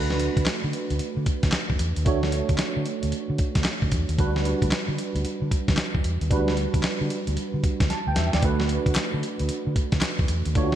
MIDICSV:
0, 0, Header, 1, 5, 480
1, 0, Start_track
1, 0, Key_signature, 2, "major"
1, 0, Tempo, 530973
1, 1860, Time_signature, 4, 2, 24, 8
1, 9721, End_track
2, 0, Start_track
2, 0, Title_t, "Tine electric piano"
2, 0, Program_c, 0, 4
2, 0, Note_on_c, 0, 57, 68
2, 0, Note_on_c, 0, 62, 61
2, 0, Note_on_c, 0, 66, 68
2, 0, Note_on_c, 0, 71, 76
2, 100, Control_c, 0, 64, 127
2, 1820, Note_off_c, 0, 57, 0
2, 1823, Note_off_c, 0, 62, 0
2, 1826, Note_off_c, 0, 66, 0
2, 1831, Note_off_c, 0, 71, 0
2, 1856, Note_on_c, 0, 57, 79
2, 1863, Note_on_c, 0, 62, 66
2, 1870, Note_on_c, 0, 66, 65
2, 1876, Note_on_c, 0, 73, 74
2, 3742, Note_off_c, 0, 57, 0
2, 3745, Note_off_c, 0, 62, 0
2, 3748, Note_off_c, 0, 66, 0
2, 3752, Note_off_c, 0, 73, 0
2, 3780, Note_on_c, 0, 55, 70
2, 3784, Note_on_c, 0, 62, 66
2, 3792, Control_c, 0, 64, 0
2, 3792, Note_on_c, 0, 66, 68
2, 3798, Note_on_c, 0, 71, 82
2, 3935, Control_c, 0, 64, 127
2, 5663, Note_off_c, 0, 55, 0
2, 5665, Note_off_c, 0, 62, 0
2, 5669, Note_off_c, 0, 66, 0
2, 5673, Note_off_c, 0, 71, 0
2, 5695, Note_on_c, 0, 55, 70
2, 5702, Note_on_c, 0, 62, 67
2, 5710, Note_on_c, 0, 66, 66
2, 5719, Note_on_c, 0, 71, 77
2, 7142, Note_on_c, 0, 81, 56
2, 7287, Note_off_c, 0, 81, 0
2, 7301, Note_on_c, 0, 79, 71
2, 7378, Note_on_c, 0, 76, 65
2, 7379, Note_off_c, 0, 79, 0
2, 7524, Note_off_c, 0, 76, 0
2, 7537, Note_on_c, 0, 74, 55
2, 7581, Note_off_c, 0, 55, 0
2, 7584, Note_off_c, 0, 62, 0
2, 7589, Note_off_c, 0, 66, 0
2, 7593, Note_off_c, 0, 71, 0
2, 7616, Note_on_c, 0, 57, 72
2, 7625, Note_on_c, 0, 62, 66
2, 7630, Note_on_c, 0, 66, 68
2, 7632, Control_c, 0, 64, 0
2, 7636, Note_on_c, 0, 71, 80
2, 7763, Note_off_c, 0, 74, 0
2, 7770, Control_c, 0, 64, 127
2, 9501, Note_off_c, 0, 57, 0
2, 9506, Note_off_c, 0, 62, 0
2, 9508, Note_off_c, 0, 66, 0
2, 9512, Note_off_c, 0, 71, 0
2, 9541, Note_on_c, 0, 57, 75
2, 9546, Note_on_c, 0, 62, 67
2, 9553, Note_on_c, 0, 65, 51
2, 9560, Note_on_c, 0, 73, 78
2, 9610, Note_on_c, 0, 66, 66
2, 9620, Note_off_c, 0, 65, 0
2, 9721, Note_off_c, 0, 57, 0
2, 9721, Note_off_c, 0, 62, 0
2, 9721, Note_off_c, 0, 66, 0
2, 9721, Note_off_c, 0, 73, 0
2, 9721, End_track
3, 0, Start_track
3, 0, Title_t, "Fingered electric bass"
3, 0, Program_c, 1, 33
3, 0, Note_on_c, 1, 38, 96
3, 245, Note_off_c, 1, 38, 0
3, 333, Note_on_c, 1, 38, 79
3, 400, Note_off_c, 1, 38, 0
3, 579, Note_on_c, 1, 50, 92
3, 644, Note_off_c, 1, 50, 0
3, 817, Note_on_c, 1, 38, 81
3, 882, Note_off_c, 1, 38, 0
3, 1054, Note_on_c, 1, 50, 87
3, 1121, Note_off_c, 1, 50, 0
3, 1296, Note_on_c, 1, 38, 92
3, 1362, Note_off_c, 1, 38, 0
3, 1537, Note_on_c, 1, 40, 76
3, 1602, Note_off_c, 1, 40, 0
3, 1622, Note_on_c, 1, 40, 97
3, 1741, Note_off_c, 1, 40, 0
3, 1778, Note_on_c, 1, 39, 89
3, 1843, Note_off_c, 1, 39, 0
3, 1864, Note_on_c, 1, 38, 114
3, 2168, Note_off_c, 1, 38, 0
3, 2254, Note_on_c, 1, 38, 83
3, 2321, Note_off_c, 1, 38, 0
3, 2500, Note_on_c, 1, 50, 94
3, 2565, Note_off_c, 1, 50, 0
3, 2740, Note_on_c, 1, 38, 86
3, 2805, Note_off_c, 1, 38, 0
3, 2979, Note_on_c, 1, 50, 97
3, 3044, Note_off_c, 1, 50, 0
3, 3216, Note_on_c, 1, 38, 84
3, 3282, Note_off_c, 1, 38, 0
3, 3456, Note_on_c, 1, 38, 82
3, 3522, Note_off_c, 1, 38, 0
3, 3545, Note_on_c, 1, 40, 94
3, 3662, Note_off_c, 1, 40, 0
3, 3697, Note_on_c, 1, 39, 90
3, 3762, Note_off_c, 1, 39, 0
3, 3784, Note_on_c, 1, 38, 107
3, 4088, Note_off_c, 1, 38, 0
3, 4177, Note_on_c, 1, 38, 85
3, 4243, Note_off_c, 1, 38, 0
3, 4414, Note_on_c, 1, 50, 96
3, 4481, Note_off_c, 1, 50, 0
3, 4655, Note_on_c, 1, 38, 89
3, 4721, Note_off_c, 1, 38, 0
3, 4896, Note_on_c, 1, 50, 95
3, 4962, Note_off_c, 1, 50, 0
3, 5138, Note_on_c, 1, 38, 98
3, 5203, Note_off_c, 1, 38, 0
3, 5375, Note_on_c, 1, 40, 75
3, 5442, Note_off_c, 1, 40, 0
3, 5463, Note_on_c, 1, 40, 83
3, 5581, Note_off_c, 1, 40, 0
3, 5617, Note_on_c, 1, 39, 88
3, 5682, Note_off_c, 1, 39, 0
3, 5703, Note_on_c, 1, 38, 109
3, 6007, Note_off_c, 1, 38, 0
3, 6093, Note_on_c, 1, 38, 91
3, 6160, Note_off_c, 1, 38, 0
3, 6337, Note_on_c, 1, 50, 94
3, 6402, Note_off_c, 1, 50, 0
3, 6576, Note_on_c, 1, 38, 85
3, 6642, Note_off_c, 1, 38, 0
3, 6815, Note_on_c, 1, 50, 90
3, 6881, Note_off_c, 1, 50, 0
3, 7056, Note_on_c, 1, 38, 90
3, 7122, Note_off_c, 1, 38, 0
3, 7295, Note_on_c, 1, 38, 83
3, 7361, Note_off_c, 1, 38, 0
3, 7384, Note_on_c, 1, 40, 96
3, 7502, Note_off_c, 1, 40, 0
3, 7540, Note_on_c, 1, 39, 89
3, 7604, Note_off_c, 1, 39, 0
3, 7618, Note_on_c, 1, 38, 103
3, 7924, Note_off_c, 1, 38, 0
3, 8011, Note_on_c, 1, 38, 84
3, 8079, Note_off_c, 1, 38, 0
3, 8261, Note_on_c, 1, 50, 93
3, 8325, Note_off_c, 1, 50, 0
3, 8497, Note_on_c, 1, 38, 86
3, 8563, Note_off_c, 1, 38, 0
3, 8739, Note_on_c, 1, 50, 94
3, 8804, Note_off_c, 1, 50, 0
3, 8972, Note_on_c, 1, 38, 90
3, 9040, Note_off_c, 1, 38, 0
3, 9213, Note_on_c, 1, 40, 81
3, 9280, Note_off_c, 1, 40, 0
3, 9300, Note_on_c, 1, 40, 90
3, 9419, Note_off_c, 1, 40, 0
3, 9457, Note_on_c, 1, 39, 94
3, 9522, Note_off_c, 1, 39, 0
3, 9543, Note_on_c, 1, 38, 116
3, 9721, Note_off_c, 1, 38, 0
3, 9721, End_track
4, 0, Start_track
4, 0, Title_t, "Muted fingered electric bass strokes"
4, 420, Note_on_c, 9, 29, 49
4, 511, Note_off_c, 9, 29, 0
4, 903, Note_on_c, 9, 29, 46
4, 993, Note_off_c, 9, 29, 0
4, 2346, Note_on_c, 9, 29, 50
4, 2436, Note_off_c, 9, 29, 0
4, 2827, Note_on_c, 9, 29, 47
4, 2918, Note_off_c, 9, 29, 0
4, 4266, Note_on_c, 9, 29, 50
4, 4356, Note_off_c, 9, 29, 0
4, 4744, Note_on_c, 9, 29, 47
4, 4834, Note_off_c, 9, 29, 0
4, 6663, Note_on_c, 9, 29, 48
4, 6753, Note_off_c, 9, 29, 0
4, 8110, Note_on_c, 9, 29, 49
4, 8201, Note_off_c, 9, 29, 0
4, 9721, End_track
5, 0, Start_track
5, 0, Title_t, "Drums"
5, 94, Note_on_c, 9, 38, 60
5, 177, Note_on_c, 9, 42, 79
5, 184, Note_off_c, 9, 38, 0
5, 267, Note_off_c, 9, 42, 0
5, 332, Note_on_c, 9, 36, 85
5, 334, Note_on_c, 9, 42, 47
5, 415, Note_on_c, 9, 39, 87
5, 421, Note_off_c, 9, 42, 0
5, 421, Note_on_c, 9, 38, 113
5, 421, Note_on_c, 9, 42, 76
5, 423, Note_off_c, 9, 36, 0
5, 505, Note_off_c, 9, 39, 0
5, 511, Note_off_c, 9, 38, 0
5, 511, Note_off_c, 9, 42, 0
5, 663, Note_on_c, 9, 42, 67
5, 753, Note_off_c, 9, 42, 0
5, 817, Note_on_c, 9, 42, 53
5, 898, Note_off_c, 9, 42, 0
5, 898, Note_on_c, 9, 42, 75
5, 989, Note_off_c, 9, 42, 0
5, 1140, Note_on_c, 9, 42, 74
5, 1143, Note_on_c, 9, 36, 88
5, 1231, Note_off_c, 9, 42, 0
5, 1233, Note_off_c, 9, 36, 0
5, 1293, Note_on_c, 9, 38, 64
5, 1293, Note_on_c, 9, 42, 57
5, 1295, Note_on_c, 9, 36, 93
5, 1373, Note_on_c, 9, 39, 94
5, 1379, Note_off_c, 9, 38, 0
5, 1379, Note_on_c, 9, 38, 107
5, 1380, Note_off_c, 9, 42, 0
5, 1380, Note_on_c, 9, 42, 71
5, 1385, Note_off_c, 9, 36, 0
5, 1463, Note_off_c, 9, 39, 0
5, 1469, Note_off_c, 9, 38, 0
5, 1471, Note_off_c, 9, 42, 0
5, 1535, Note_on_c, 9, 36, 90
5, 1620, Note_on_c, 9, 42, 92
5, 1625, Note_off_c, 9, 36, 0
5, 1711, Note_off_c, 9, 42, 0
5, 1775, Note_on_c, 9, 42, 54
5, 1860, Note_off_c, 9, 42, 0
5, 1860, Note_on_c, 9, 42, 70
5, 1862, Note_on_c, 9, 36, 116
5, 1950, Note_off_c, 9, 42, 0
5, 1952, Note_off_c, 9, 36, 0
5, 2016, Note_on_c, 9, 38, 63
5, 2099, Note_on_c, 9, 42, 71
5, 2107, Note_off_c, 9, 38, 0
5, 2190, Note_off_c, 9, 42, 0
5, 2251, Note_on_c, 9, 42, 55
5, 2253, Note_on_c, 9, 36, 88
5, 2332, Note_on_c, 9, 39, 83
5, 2338, Note_off_c, 9, 42, 0
5, 2338, Note_on_c, 9, 38, 108
5, 2338, Note_on_c, 9, 42, 77
5, 2343, Note_off_c, 9, 36, 0
5, 2423, Note_off_c, 9, 39, 0
5, 2429, Note_off_c, 9, 38, 0
5, 2429, Note_off_c, 9, 42, 0
5, 2582, Note_on_c, 9, 42, 68
5, 2672, Note_off_c, 9, 42, 0
5, 2737, Note_on_c, 9, 42, 56
5, 2821, Note_off_c, 9, 42, 0
5, 2821, Note_on_c, 9, 42, 73
5, 2911, Note_off_c, 9, 42, 0
5, 3060, Note_on_c, 9, 42, 67
5, 3064, Note_on_c, 9, 36, 90
5, 3150, Note_off_c, 9, 42, 0
5, 3155, Note_off_c, 9, 36, 0
5, 3211, Note_on_c, 9, 38, 71
5, 3211, Note_on_c, 9, 42, 56
5, 3215, Note_on_c, 9, 36, 93
5, 3291, Note_on_c, 9, 39, 92
5, 3298, Note_off_c, 9, 38, 0
5, 3298, Note_on_c, 9, 38, 111
5, 3299, Note_off_c, 9, 42, 0
5, 3299, Note_on_c, 9, 42, 83
5, 3306, Note_off_c, 9, 36, 0
5, 3382, Note_off_c, 9, 39, 0
5, 3388, Note_off_c, 9, 38, 0
5, 3389, Note_off_c, 9, 42, 0
5, 3455, Note_on_c, 9, 36, 95
5, 3540, Note_on_c, 9, 42, 88
5, 3543, Note_off_c, 9, 36, 0
5, 3543, Note_on_c, 9, 36, 98
5, 3630, Note_off_c, 9, 42, 0
5, 3634, Note_off_c, 9, 36, 0
5, 3697, Note_on_c, 9, 42, 55
5, 3783, Note_off_c, 9, 42, 0
5, 3783, Note_on_c, 9, 42, 63
5, 3784, Note_on_c, 9, 36, 109
5, 3873, Note_off_c, 9, 42, 0
5, 3874, Note_off_c, 9, 36, 0
5, 3942, Note_on_c, 9, 38, 63
5, 4026, Note_on_c, 9, 42, 73
5, 4033, Note_off_c, 9, 38, 0
5, 4116, Note_off_c, 9, 42, 0
5, 4176, Note_on_c, 9, 36, 80
5, 4179, Note_on_c, 9, 42, 52
5, 4261, Note_on_c, 9, 39, 89
5, 4267, Note_off_c, 9, 36, 0
5, 4267, Note_off_c, 9, 42, 0
5, 4267, Note_on_c, 9, 42, 72
5, 4268, Note_on_c, 9, 38, 111
5, 4352, Note_off_c, 9, 39, 0
5, 4358, Note_off_c, 9, 38, 0
5, 4358, Note_off_c, 9, 42, 0
5, 4506, Note_on_c, 9, 42, 71
5, 4596, Note_off_c, 9, 42, 0
5, 4661, Note_on_c, 9, 42, 54
5, 4743, Note_off_c, 9, 42, 0
5, 4743, Note_on_c, 9, 42, 78
5, 4833, Note_off_c, 9, 42, 0
5, 4985, Note_on_c, 9, 36, 92
5, 4986, Note_on_c, 9, 42, 77
5, 5075, Note_off_c, 9, 36, 0
5, 5077, Note_off_c, 9, 42, 0
5, 5136, Note_on_c, 9, 36, 94
5, 5137, Note_on_c, 9, 38, 73
5, 5137, Note_on_c, 9, 42, 54
5, 5216, Note_on_c, 9, 39, 85
5, 5222, Note_off_c, 9, 38, 0
5, 5222, Note_on_c, 9, 38, 115
5, 5223, Note_off_c, 9, 42, 0
5, 5223, Note_on_c, 9, 42, 81
5, 5227, Note_off_c, 9, 36, 0
5, 5306, Note_off_c, 9, 39, 0
5, 5312, Note_off_c, 9, 38, 0
5, 5314, Note_off_c, 9, 42, 0
5, 5375, Note_on_c, 9, 36, 94
5, 5462, Note_on_c, 9, 42, 88
5, 5466, Note_off_c, 9, 36, 0
5, 5553, Note_off_c, 9, 42, 0
5, 5617, Note_on_c, 9, 42, 51
5, 5701, Note_on_c, 9, 36, 115
5, 5702, Note_off_c, 9, 42, 0
5, 5702, Note_on_c, 9, 42, 63
5, 5791, Note_off_c, 9, 36, 0
5, 5792, Note_off_c, 9, 42, 0
5, 5858, Note_on_c, 9, 38, 63
5, 5939, Note_on_c, 9, 42, 70
5, 5948, Note_off_c, 9, 38, 0
5, 6029, Note_off_c, 9, 42, 0
5, 6092, Note_on_c, 9, 36, 85
5, 6094, Note_on_c, 9, 42, 52
5, 6175, Note_on_c, 9, 39, 84
5, 6181, Note_off_c, 9, 42, 0
5, 6181, Note_on_c, 9, 42, 75
5, 6182, Note_on_c, 9, 38, 109
5, 6183, Note_off_c, 9, 36, 0
5, 6266, Note_off_c, 9, 39, 0
5, 6272, Note_off_c, 9, 38, 0
5, 6272, Note_off_c, 9, 42, 0
5, 6422, Note_on_c, 9, 42, 77
5, 6512, Note_off_c, 9, 42, 0
5, 6574, Note_on_c, 9, 42, 55
5, 6660, Note_off_c, 9, 42, 0
5, 6660, Note_on_c, 9, 42, 77
5, 6751, Note_off_c, 9, 42, 0
5, 6903, Note_on_c, 9, 36, 89
5, 6903, Note_on_c, 9, 42, 70
5, 6993, Note_off_c, 9, 36, 0
5, 6994, Note_off_c, 9, 42, 0
5, 7054, Note_on_c, 9, 36, 104
5, 7055, Note_on_c, 9, 38, 72
5, 7055, Note_on_c, 9, 42, 55
5, 7142, Note_off_c, 9, 38, 0
5, 7142, Note_off_c, 9, 42, 0
5, 7142, Note_on_c, 9, 38, 54
5, 7142, Note_on_c, 9, 42, 73
5, 7144, Note_off_c, 9, 36, 0
5, 7232, Note_off_c, 9, 38, 0
5, 7232, Note_off_c, 9, 42, 0
5, 7376, Note_on_c, 9, 38, 83
5, 7376, Note_on_c, 9, 42, 92
5, 7466, Note_off_c, 9, 38, 0
5, 7466, Note_off_c, 9, 42, 0
5, 7533, Note_on_c, 9, 38, 84
5, 7533, Note_on_c, 9, 42, 50
5, 7615, Note_off_c, 9, 42, 0
5, 7615, Note_on_c, 9, 42, 67
5, 7618, Note_on_c, 9, 36, 117
5, 7624, Note_off_c, 9, 38, 0
5, 7706, Note_off_c, 9, 42, 0
5, 7708, Note_off_c, 9, 36, 0
5, 7772, Note_on_c, 9, 38, 65
5, 7857, Note_on_c, 9, 42, 80
5, 7862, Note_off_c, 9, 38, 0
5, 7947, Note_off_c, 9, 42, 0
5, 8011, Note_on_c, 9, 36, 85
5, 8014, Note_on_c, 9, 42, 50
5, 8091, Note_on_c, 9, 39, 83
5, 8096, Note_off_c, 9, 39, 0
5, 8096, Note_on_c, 9, 39, 93
5, 8101, Note_off_c, 9, 36, 0
5, 8102, Note_off_c, 9, 42, 0
5, 8102, Note_on_c, 9, 38, 112
5, 8102, Note_on_c, 9, 42, 72
5, 8186, Note_off_c, 9, 39, 0
5, 8193, Note_off_c, 9, 38, 0
5, 8193, Note_off_c, 9, 42, 0
5, 8344, Note_on_c, 9, 42, 73
5, 8435, Note_off_c, 9, 42, 0
5, 8493, Note_on_c, 9, 42, 54
5, 8576, Note_off_c, 9, 42, 0
5, 8576, Note_on_c, 9, 42, 78
5, 8667, Note_off_c, 9, 42, 0
5, 8821, Note_on_c, 9, 42, 70
5, 8822, Note_on_c, 9, 36, 90
5, 8911, Note_off_c, 9, 42, 0
5, 8912, Note_off_c, 9, 36, 0
5, 8969, Note_on_c, 9, 38, 72
5, 8969, Note_on_c, 9, 42, 56
5, 8972, Note_on_c, 9, 36, 105
5, 9049, Note_on_c, 9, 39, 86
5, 9055, Note_off_c, 9, 38, 0
5, 9055, Note_on_c, 9, 38, 111
5, 9056, Note_off_c, 9, 42, 0
5, 9056, Note_on_c, 9, 42, 74
5, 9060, Note_off_c, 9, 39, 0
5, 9060, Note_on_c, 9, 39, 84
5, 9062, Note_off_c, 9, 36, 0
5, 9145, Note_off_c, 9, 38, 0
5, 9147, Note_off_c, 9, 42, 0
5, 9150, Note_off_c, 9, 39, 0
5, 9213, Note_on_c, 9, 36, 100
5, 9296, Note_on_c, 9, 42, 85
5, 9303, Note_off_c, 9, 36, 0
5, 9386, Note_off_c, 9, 42, 0
5, 9451, Note_on_c, 9, 42, 53
5, 9538, Note_off_c, 9, 42, 0
5, 9538, Note_on_c, 9, 42, 67
5, 9540, Note_on_c, 9, 36, 116
5, 9629, Note_off_c, 9, 42, 0
5, 9631, Note_off_c, 9, 36, 0
5, 9721, End_track
0, 0, End_of_file